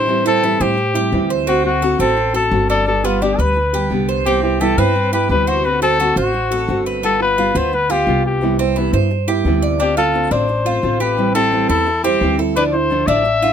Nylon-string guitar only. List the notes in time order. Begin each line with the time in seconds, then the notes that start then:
0.07 E3 G3 C4 E4
0.25 G3 C4 E4
0.42 E3 G3 C4 E4
0.59 G3 C4 E4
0.77 muted nylon-string guitar stroke
0.94 G3 C4 E4
1.12 E3 G3 C4 E4
1.47 D3 A3 C4 F#4
1.64 A3 C4 F#4
1.81 D3 A3 C4 F#4
1.99 A3 C4 F#4
2.16 muted nylon-string guitar stroke
2.34 A3 C4 F#4
2.51 D3 A3 C4 F#4
2.86 D3 G3 B3 G4
3.04 G3 B3 G4
3.21 D3 G3 B3 G4
3.38 G3 B3 G4
3.56 muted nylon-string guitar stroke
3.73 G3 B3 G4
3.90 D3 G3 B3 G4
4.25 C3 E3 G3 B3 E4
4.42 G3 B3 E4
4.60 C3 E3 G3 B3 E4
4.77 G3 B3 E4
4.95 muted nylon-string guitar stroke
5.12 G3 B3 E4
5.30 C3 E3 G3 B3 E4
5.64 D3 A3 C4 F#4
5.82 A3 C4 F#4
5.99 D3 A3 C4 F#4
6.16 A3 C4 F#4
6.33 muted nylon-string guitar stroke
6.51 A3 C4 F#4
6.68 D3 A3 C4 F#4
7.02 G3 B3 F4
7.20 B3 F4
7.37 G3 B3 F4
7.55 B3 F4
7.72 muted nylon-string guitar stroke
7.89 B3 F4
8.06 G3 B3 F4
8.41 C3 E3 G3 B3 E4
8.58 G3 B3 E4
8.76 C3 E3 G3 B3 E4
8.93 G3 B3 E4
9.11 muted nylon-string guitar stroke
9.27 G3 B3 E4
9.45 C3 E3 G3 B3 E4
9.79 D3 A3 C4 F4
9.97 A3 C4 F4
10.13 D3 A3 C4 F4
10.48 muted nylon-string guitar stroke
10.65 A3 C4 F4
10.82 D3 A3 C4 F4
11.00 A3 C4 F4
11.17 E3 G3 C4 E4
11.34 G3 C4 E4
11.51 E3 G3 C4 E4
11.86 muted nylon-string guitar stroke
12.03 G3 C4 E4
12.21 E3 G3 C4 E4
12.38 G3 C4 E4
12.55 D3 F3 A3 D4 E4
12.73 A3 D4 E4
12.90 D3 F3 A3 D4 E4
13.25 muted nylon-string guitar stroke
13.42 A3 D4 E4